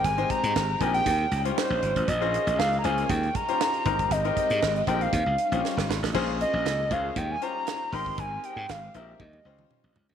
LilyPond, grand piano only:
\new Staff \with { instrumentName = "Grand piano" } { \time 4/4 \key ees \mixolydian \tempo 4 = 118 r16 <c' ees' g' c''>4 r16 <c' ees' g' bes'>8 r8. <des' f' g' c''>4 r16 | r16 <des' f' aes' c''>4 r16 <des' f' aes' c''>8 r8. <des' f' g' c''>8. <c' ees' g' bes'>8 | r16 <c' ees' g' bes'>4 r16 <c' ees' g' bes'>8 r8. <des' f' g' c''>4 r16 | <des' f' aes' c''>4 r8 <des' f' aes' c''>8 r8 <des' f' g' c''>4 <c' ees' g' bes'>8~ |
<c' ees' g' bes'>4 r8 <c' ees' g' bes'>8 r8 <des' f' g' c''>4 r8 | }